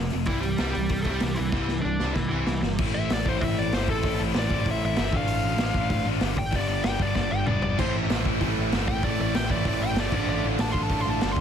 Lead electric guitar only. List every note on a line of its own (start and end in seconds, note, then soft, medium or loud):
0.27 0.42 E3 medium
0.27 0.41 E4 medium
0.41 0.72 G3 medium
0.41 0.69 G4 loud
0.71 1.01 G3 medium
0.71 1.05 G4 medium
1.02 1.13 A3 medium
1.02 1.10 A4 medium
1.10 1.36 G3 medium
1.10 1.37 G4 medium
1.35 1.81 E3 medium
1.35 1.81 E4 loud
1.81 2.13 D4 medium
1.81 2.14 D5 medium
2.14 2.28 E3 medium
2.14 2.28 E4 medium
2.29 2.60 E3 medium
2.29 2.60 E4 medium
2.95 3.10 E5 loud
3.13 3.27 D5 medium
3.29 3.43 C5 medium
3.41 3.59 E5 loud
3.59 3.73 D5 medium
3.74 3.89 C5 medium
3.90 4.20 A4 loud
4.39 4.67 D5 loud
4.71 4.84 E5 loud
4.85 5.14 E5 medium
5.17 6.06 F5 loud
6.39 6.53 G5 loud
6.56 6.67 D5 loud
6.68 6.84 D5 loud
6.83 6.99 G5 loud
7.02 7.14 D5 medium
7.15 7.31 D5 loud
7.31 7.47 G5 medium
7.46 7.62 D5 loud
7.63 7.79 D5 loud
7.79 7.94 C5 loud
8.88 9.03 G5 loud
9.04 9.19 D5 medium
9.21 9.35 D5 medium
9.35 9.50 G5 loud
9.51 9.66 D5 medium
9.68 9.82 D5 loud
9.83 9.97 G5 loud
10.00 10.13 D5 loud
10.14 10.28 D5 loud
10.29 10.44 D5 loud
10.61 10.71 A5 loud
10.71 10.83 C6 loud
10.83 10.91 A5 medium
10.93 11.00 A5 loud
11.01 11.10 C6 medium
11.10 11.21 A5 medium
11.22 11.31 A5 loud
11.31 11.41 C6 loud